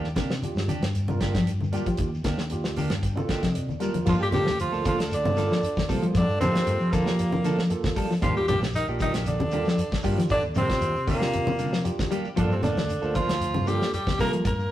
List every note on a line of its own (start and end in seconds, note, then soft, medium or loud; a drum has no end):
0.00 0.13 D#2 medium
0.00 snare soft
0.04 shekere soft
0.16 0.39 C3 medium
0.16 0.31 D3 medium
0.16 0.32 A#3 medium
0.16 0.33 D4 medium
0.16 0.33 G4 medium
0.16 kick medium
0.16 snare medium
0.16 closed hi-hat soft
0.16 high conga medium
0.16 shekere medium
0.30 snare medium
0.30 shekere soft
0.42 0.71 D4 medium
0.42 0.71 F4 medium
0.42 0.72 G4 medium
0.42 closed hi-hat medium
0.42 high conga medium
0.42 shekere medium
0.55 0.66 G2 medium
0.55 snare medium
0.55 shekere soft
0.68 0.84 D3 medium
0.68 0.85 D4 medium
0.68 0.85 G4 medium
0.68 muted clean electric guitar stroke medium
0.68 closed hi-hat medium
0.68 high conga medium
0.68 shekere medium
0.81 1.74 G2 medium
0.81 snare medium
0.81 closed hi-hat soft
0.81 shekere soft
0.95 closed hi-hat medium
0.95 shekere medium
1.08 1.16 C3 medium
1.08 1.37 D4 medium
1.08 1.37 F4 medium
1.08 1.37 A#4 medium
1.08 high conga medium
1.08 shekere soft
1.20 1.30 D3 medium
1.20 1.34 A#3 medium
1.20 1.34 D4 medium
1.20 1.32 G4 medium
1.20 kick medium
1.20 snare medium
1.20 closed hi-hat soft
1.20 shekere medium
1.33 1.50 F3 medium
1.33 1.50 D4 soft
1.33 1.49 G4 medium
1.33 kick medium
1.33 snare medium
1.33 closed hi-hat soft
1.33 shekere soft
1.47 closed hi-hat medium
1.47 shekere medium
1.61 high conga medium
1.61 shekere soft
1.72 1.81 G3 medium
1.72 1.89 A#3 medium
1.72 2.06 D4 medium
1.72 1.89 D4 medium
1.72 2.07 F4 medium
1.72 1.89 G4 medium
1.72 2.07 G4 loud
1.72 closed hi-hat soft
1.72 shekere medium
1.86 1.94 F3 medium
1.86 muted fingered electric bass stroke soft
1.86 kick medium
1.86 closed hi-hat soft
1.86 shekere soft
1.97 2.22 D#2 medium
1.97 2.14 D#3 medium
1.97 kick medium
1.97 closed hi-hat medium
1.97 shekere medium
2.15 shekere soft
2.24 2.64 D#2 medium
2.24 2.40 D3 medium
2.24 2.41 A#3 medium
2.24 2.41 D4 medium
2.24 2.41 G4 medium
2.24 kick medium
2.24 snare medium
2.24 closed hi-hat medium
2.24 high conga loud
2.24 shekere medium
2.38 snare medium
2.38 shekere soft
2.50 2.79 D4 medium
2.50 2.79 F4 medium
2.50 2.80 G4 medium
2.50 closed hi-hat medium
2.50 shekere medium
2.64 2.90 D2 medium
2.64 snare medium
2.64 shekere soft
2.76 2.92 D3 medium
2.76 2.93 A#3 medium
2.76 2.93 D4 medium
2.76 2.94 G4 medium
2.76 3.01 A5 medium
2.76 open hi-hat medium
2.76 high conga medium
2.76 shekere medium
2.90 3.13 G2 medium
2.90 snare medium
2.90 closed hi-hat medium
2.90 shekere soft
3.03 3.27 G5 medium
3.03 kick medium
3.03 closed hi-hat medium
3.03 shekere medium
3.15 3.23 C3 medium
3.15 3.44 D4 medium
3.15 3.44 F4 medium
3.15 3.45 A4 loud
3.15 high conga medium
3.15 shekere soft
3.28 3.37 D3 medium
3.28 3.45 A#3 medium
3.28 3.45 D4 medium
3.28 3.45 G4 medium
3.28 3.53 D#5 medium
3.28 kick medium
3.28 snare medium
3.28 closed hi-hat soft
3.28 shekere medium
3.42 3.66 C3 medium
3.42 3.57 F3 medium
3.42 kick medium
3.42 snare medium
3.42 closed hi-hat soft
3.42 shekere soft
3.54 4.03 D5 medium
3.54 closed hi-hat medium
3.54 shekere medium
3.69 high conga medium
3.69 shekere soft
3.80 3.88 G3 medium
3.80 3.97 A#3 medium
3.80 4.06 D4 medium
3.80 3.97 D4 medium
3.80 4.05 F4 medium
3.80 4.07 A#4 medium
3.80 muted clean electric guitar stroke medium
3.80 closed hi-hat soft
3.80 shekere medium
3.94 4.01 F3 medium
3.94 closed hi-hat medium
3.94 high conga medium
3.94 shekere soft
4.05 4.30 G2 medium
4.05 4.21 F3 medium
4.05 4.13 F3 medium
4.05 4.23 F3 medium
4.05 4.34 A#3 medium
4.05 4.23 A#3 medium
4.05 4.23 D4 medium
4.05 4.34 F4 medium
4.05 4.15 F4 medium
4.05 4.35 A4 medium
4.05 4.23 A4 medium
4.05 kick medium
4.05 crash medium
4.05 low conga medium
4.05 shekere medium
4.19 4.25 G3 medium
4.19 4.28 G4 loud
4.19 shekere soft
4.32 4.68 D2 medium
4.32 4.48 D3 medium
4.32 4.49 F3 medium
4.32 4.57 G3 medium
4.32 4.49 A#3 medium
4.32 4.50 D4 medium
4.32 4.57 G4 loud
4.32 4.50 A4 medium
4.32 closed hi-hat soft
4.32 high conga loud
4.32 low conga medium
4.32 shekere medium
4.47 snare medium
4.47 high conga medium
4.47 shekere soft
4.59 4.83 F3 medium
4.59 4.84 F4 loud
4.59 closed hi-hat medium
4.59 shekere medium
4.71 4.96 D2 medium
4.71 5.00 A#3 medium
4.71 4.84 A#3 soft
4.71 4.84 D4 soft
4.71 5.00 F4 medium
4.71 4.84 A4 soft
4.71 5.00 A4 medium
4.71 shekere soft
4.84 4.99 D3 medium
4.84 4.98 F3 medium
4.84 4.98 A#3 medium
4.84 4.98 D4 medium
4.84 4.97 A4 medium
4.84 kick medium
4.84 closed hi-hat medium
4.84 high conga medium
4.84 shekere medium
4.88 4.99 F4 medium
4.98 5.21 D2 medium
4.98 5.14 A#3 soft
4.98 5.14 D4 soft
4.98 5.13 A4 soft
4.98 snare medium
4.98 closed hi-hat medium
4.98 shekere soft
5.11 5.85 D3 medium
5.11 5.86 D4 medium
5.11 closed hi-hat medium
5.11 shekere medium
5.24 5.47 G2 medium
5.24 5.31 C3 medium
5.24 high conga loud
5.24 shekere soft
5.37 5.45 D3 medium
5.37 5.59 A#3 medium
5.37 5.53 A#3 medium
5.37 5.53 D4 medium
5.37 5.59 F4 medium
5.37 5.53 A4 medium
5.37 5.60 A4 medium
5.37 muted clean electric guitar stroke medium
5.37 snare soft
5.37 closed hi-hat soft
5.37 shekere medium
5.50 5.65 F3 medium
5.50 snare medium
5.50 shekere soft
5.62 closed hi-hat medium
5.62 shekere medium
5.76 kick medium
5.76 snare medium
5.76 high conga medium
5.76 shekere soft
5.88 6.01 C3 medium
5.88 6.04 F3 medium
5.88 5.97 G3 medium
5.88 6.16 A#3 medium
5.88 6.05 A#3 medium
5.88 6.16 F4 medium
5.88 6.05 A4 medium
5.88 6.17 C5 medium
5.88 kick medium
5.88 snare soft
5.88 open hi-hat medium
5.88 shekere medium
6.02 6.10 F3 medium
6.02 6.25 G3 medium
6.02 closed hi-hat medium
6.02 shekere soft
6.14 6.39 D3 medium
6.14 6.29 F3 medium
6.14 6.40 D4 loud
6.14 kick medium
6.14 snare soft
6.14 closed hi-hat medium
6.14 low conga medium
6.14 shekere medium
6.28 6.39 G2 medium
6.28 shekere soft
6.40 6.93 C3 medium
6.40 6.56 D3 medium
6.40 6.64 F3 medium
6.40 6.56 A#3 medium
6.40 6.93 C4 loud
6.40 6.57 D4 medium
6.40 6.57 A4 medium
6.40 closed hi-hat soft
6.40 high conga loud
6.40 low conga medium
6.40 shekere medium
6.53 6.76 A#3 medium
6.53 6.76 F4 medium
6.53 6.76 A4 medium
6.53 snare medium
6.53 closed hi-hat medium
6.53 shekere soft
6.66 6.79 G2 loud
6.66 closed hi-hat medium
6.66 shekere medium
6.80 7.72 F3 medium
6.80 shekere soft
6.92 7.70 A#2 medium
6.92 7.08 D3 medium
6.92 7.70 A#3 medium
6.92 7.09 D4 medium
6.92 7.09 A4 medium
6.92 muted clean electric guitar stroke medium
6.92 kick medium
6.92 closed hi-hat medium
6.92 high conga medium
6.92 shekere medium
7.05 7.33 A#3 medium
7.05 7.33 F4 medium
7.05 7.34 G4 medium
7.05 snare medium
7.05 shekere soft
7.19 closed hi-hat medium
7.19 shekere medium
7.32 7.40 C3 medium
7.32 high conga medium
7.32 shekere soft
7.44 7.52 D3 medium
7.44 7.60 F3 medium
7.44 7.61 A#3 medium
7.44 7.61 D4 medium
7.44 7.61 A4 medium
7.44 snare soft
7.44 closed hi-hat medium
7.44 shekere medium
7.58 7.73 F3 medium
7.58 snare medium
7.58 shekere soft
7.70 7.92 A#3 medium
7.70 7.93 F4 medium
7.70 7.93 A4 loud
7.70 closed hi-hat medium
7.70 shekere medium
7.84 kick medium
7.84 snare medium
7.84 high conga medium
7.84 shekere soft
7.96 8.12 F3 medium
7.96 8.04 G3 medium
7.96 8.13 A#3 medium
7.96 8.13 D4 medium
7.96 8.13 A4 medium
7.96 kick medium
7.96 open hi-hat medium
7.96 shekere medium
8.09 8.17 F3 medium
8.09 snare soft
8.09 shekere soft
8.21 8.45 D#2 medium
8.21 8.37 D#3 medium
8.21 8.35 F3 medium
8.21 8.38 G3 medium
8.21 8.39 A#3 medium
8.21 8.50 D4 medium
8.21 8.39 D4 medium
8.21 8.50 F4 medium
8.21 8.35 F4 medium
8.21 8.50 G4 medium
8.21 8.39 G4 medium
8.21 kick medium
8.21 snare soft
8.21 closed hi-hat medium
8.21 low conga medium
8.21 shekere medium
8.36 8.47 G3 medium
8.36 8.48 G4 medium
8.36 shekere soft
8.48 8.83 A#1 medium
8.48 8.63 D3 medium
8.48 8.60 G3 medium
8.48 8.64 G3 medium
8.48 8.65 A#3 medium
8.48 8.65 D4 medium
8.48 8.60 G4 loud
8.48 8.65 G4 medium
8.48 closed hi-hat soft
8.48 high conga medium
8.48 low conga medium
8.48 shekere medium
8.61 snare medium
8.61 shekere soft
8.73 8.87 D#3 medium
8.73 8.87 D#4 medium
8.73 snare soft
8.73 closed hi-hat medium
8.73 shekere medium
8.86 9.10 A#1 medium
8.86 9.01 A#3 soft
8.86 9.16 D4 medium
8.86 9.00 D4 soft
8.86 9.16 F4 medium
8.86 9.00 G4 medium
8.86 9.16 G4 medium
8.86 shekere soft
8.99 9.15 D3 medium
8.99 9.13 D#3 medium
8.99 9.14 G3 medium
8.99 9.14 D4 medium
8.99 9.13 D#4 medium
8.99 9.13 G4 medium
8.99 kick medium
8.99 closed hi-hat medium
8.99 high conga medium
8.99 shekere medium
9.13 9.36 A#1 medium
9.13 9.30 A#3 soft
9.13 9.29 D4 soft
9.13 9.29 G4 soft
9.13 snare medium
9.13 closed hi-hat medium
9.13 shekere soft
9.25 10.00 D3 medium
9.25 10.01 D4 medium
9.25 closed hi-hat medium
9.25 high conga medium
9.25 shekere medium
9.39 9.62 D#2 medium
9.39 9.47 C3 medium
9.39 high conga loud
9.39 shekere soft
9.51 9.60 D3 medium
9.51 9.68 G3 medium
9.51 9.68 A#3 medium
9.51 9.75 D4 medium
9.51 9.69 D4 medium
9.51 9.75 F4 medium
9.51 9.69 G4 medium
9.51 9.75 A4 medium
9.51 closed hi-hat soft
9.51 shekere medium
9.65 9.81 F3 medium
9.65 snare medium
9.65 shekere soft
9.78 closed hi-hat medium
9.78 shekere medium
9.91 kick medium
9.91 snare medium
9.91 high conga medium
9.91 shekere soft
10.03 10.16 G2 medium
10.03 10.20 G3 medium
10.03 10.12 G3 medium
10.03 10.20 A#3 medium
10.03 10.31 D4 medium
10.03 10.20 D4 medium
10.03 10.32 F4 medium
10.03 10.20 G4 medium
10.03 10.32 G4 medium
10.03 kick medium
10.03 open hi-hat medium
10.03 shekere medium
10.17 10.40 D#3 medium
10.17 10.25 F3 medium
10.17 snare soft
10.17 closed hi-hat medium
10.17 shekere soft
10.29 10.43 D3 loud
10.29 10.45 D#3 medium
10.29 10.42 D4 loud
10.29 kick medium
10.29 closed hi-hat medium
10.29 low conga medium
10.29 shekere medium
10.42 10.54 D#2 medium
10.42 shekere soft
10.55 10.78 C3 medium
10.55 10.71 D3 medium
10.55 10.72 G3 medium
10.55 10.72 A#3 medium
10.55 11.05 C4 medium
10.55 10.72 D4 medium
10.55 10.72 G4 medium
10.55 closed hi-hat medium
10.55 high conga medium
10.55 low conga medium
10.55 shekere medium
10.59 11.06 C3 medium
10.68 10.91 D4 medium
10.68 10.91 F4 medium
10.68 10.92 G4 medium
10.68 kick medium
10.68 snare medium
10.68 closed hi-hat soft
10.68 shekere soft
10.81 10.94 D#2 loud
10.81 closed hi-hat medium
10.81 shekere medium
10.95 11.87 C3 medium
10.95 shekere soft
11.07 11.83 A#2 medium
11.07 11.22 D3 medium
11.07 11.21 A#3 medium
11.07 11.83 A#3 medium
11.07 11.20 D4 medium
11.07 11.20 G4 medium
11.07 kick medium
11.07 open hi-hat medium
11.07 high conga medium
11.07 shekere medium
11.20 11.48 D4 medium
11.20 11.36 D4 soft
11.20 11.49 F4 medium
11.20 11.36 G4 soft
11.20 11.49 G4 medium
11.20 snare medium
11.20 shekere soft
11.34 closed hi-hat medium
11.34 high conga medium
11.34 shekere medium
11.47 11.54 C3 medium
11.47 high conga loud
11.47 shekere soft
11.58 11.67 D3 medium
11.58 11.75 G3 medium
11.58 11.75 A#3 medium
11.58 11.76 D4 medium
11.58 closed hi-hat medium
11.58 shekere medium
11.73 11.88 F3 medium
11.73 snare medium
11.73 shekere soft
11.84 12.07 D4 medium
11.84 12.07 F4 medium
11.84 12.08 G4 medium
11.84 closed hi-hat medium
11.84 shekere medium
11.99 kick medium
11.99 snare medium
11.99 high conga medium
11.99 shekere soft
12.10 12.27 G3 medium
12.10 12.19 G3 medium
12.10 12.27 A#3 medium
12.10 12.28 D4 medium
12.10 12.28 G4 medium
12.10 closed hi-hat medium
12.10 shekere medium
12.25 muted clean electric guitar stroke medium
12.25 shekere soft
12.36 12.60 G2 medium
12.36 12.50 D3 medium
12.36 12.53 F3 medium
12.36 12.52 F3 medium
12.36 12.65 A#3 medium
12.36 12.53 A#3 medium
12.36 12.54 D4 medium
12.36 12.51 D4 medium
12.36 12.65 F4 medium
12.36 12.54 A4 loud
12.36 12.65 A4 medium
12.36 kick medium
12.36 closed hi-hat medium
12.36 low conga medium
12.36 shekere medium
12.51 12.62 C3 medium
12.51 12.62 C4 medium
12.51 shekere soft
12.62 12.98 D2 medium
12.62 12.78 D3 medium
12.62 13.12 D3 medium
12.62 12.79 F3 medium
12.62 12.80 A#3 medium
12.62 13.11 D4 medium
12.62 12.80 D4 medium
12.62 12.80 A4 medium
12.62 snare soft
12.62 closed hi-hat soft
12.62 high conga medium
12.62 low conga medium
12.62 shekere medium
12.77 snare medium
12.77 high conga medium
12.77 shekere soft
12.89 closed hi-hat medium
12.89 shekere medium
13.02 13.25 D2 medium
13.02 13.30 A#3 medium
13.02 13.14 A#3 soft
13.02 13.14 D4 soft
13.02 13.30 F4 medium
13.02 13.15 A4 soft
13.02 13.31 C5 medium
13.02 shekere soft
13.14 13.29 D3 medium
13.14 13.31 F3 medium
13.14 13.69 F3 medium
13.14 13.31 A#3 medium
13.14 13.32 D4 medium
13.14 13.69 F4 loud
13.14 muted clean electric guitar stroke medium
13.14 kick medium
13.14 closed hi-hat medium
13.14 high conga medium
13.14 shekere medium
13.28 13.51 D2 medium
13.28 snare medium
13.28 closed hi-hat medium
13.28 shekere soft
13.40 closed hi-hat medium
13.40 shekere medium
13.54 13.77 G2 medium
13.54 13.62 C3 medium
13.54 high conga loud
13.54 shekere soft
13.66 13.75 D3 medium
13.66 13.83 F3 medium
13.66 13.93 G3 medium
13.66 13.89 A#3 medium
13.66 13.83 A#3 medium
13.66 13.84 D4 medium
13.66 13.89 F4 medium
13.66 13.93 G4 loud
13.66 13.90 A4 medium
13.66 muted clean electric guitar stroke medium
13.66 closed hi-hat soft
13.66 shekere medium
13.81 snare medium
13.81 shekere soft
13.93 14.17 G3 medium
13.93 14.18 G4 medium
13.93 closed hi-hat medium
13.93 shekere medium
14.07 kick medium
14.07 snare medium
14.07 high conga medium
14.07 shekere soft
14.19 14.31 C3 medium
14.19 14.35 F3 medium
14.19 14.27 G3 medium
14.19 14.47 A#3 medium
14.19 14.36 A#3 medium
14.19 14.32 A#3 medium
14.19 14.48 F4 medium
14.19 14.36 A4 medium
14.19 14.32 A#4 loud
14.19 14.48 A#4 medium
14.19 kick medium
14.19 open hi-hat medium
14.19 shekere medium
14.32 14.40 F3 medium
14.32 14.56 G3 medium
14.32 closed hi-hat medium
14.32 shekere soft
14.45 14.71 A#3 medium
14.45 14.71 A#4 loud
14.45 muted clean electric guitar stroke medium
14.45 kick medium
14.45 closed hi-hat medium
14.45 low conga medium
14.45 shekere medium
14.58 14.69 G2 medium
14.58 shekere soft